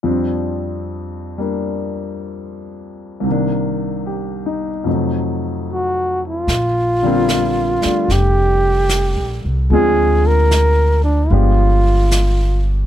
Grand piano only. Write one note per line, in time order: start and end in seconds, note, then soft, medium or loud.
0.03 3.25 F2 soft
0.03 3.25 F3 soft
0.03 1.36 G3 soft
0.03 3.26 C4 soft
0.03 1.39 D4 soft
1.38 3.25 G3 soft
1.38 3.26 A#3 soft
1.38 3.26 D4 soft
3.20 4.84 C2 soft
3.20 4.84 C3 soft
3.27 4.87 D#3 soft
3.27 4.88 A#3 soft
3.31 4.89 D4 soft
4.06 4.70 G4 soft
4.46 4.88 D#4 soft
4.84 6.48 F2 soft
4.84 6.49 C3 soft
4.84 6.49 F#3 soft
4.84 6.50 A3 soft
4.89 6.50 D#4 soft
7.03 9.70 D3 medium
7.03 7.80 G3 soft
7.03 9.71 A#3 soft
7.03 9.72 C4 soft
7.08 9.72 F4 medium
7.81 9.70 G3 soft
7.81 9.71 A3 soft
7.85 9.72 D4 soft
9.71 11.30 F3 soft
9.71 11.29 G#3 soft
9.71 11.32 C4 soft
9.71 11.30 D4 soft
9.71 11.32 F4 soft
11.31 12.86 F3 soft
11.31 12.86 G#3 soft
11.31 12.86 B3 soft
11.31 12.86 D4 soft
11.31 12.86 G4 soft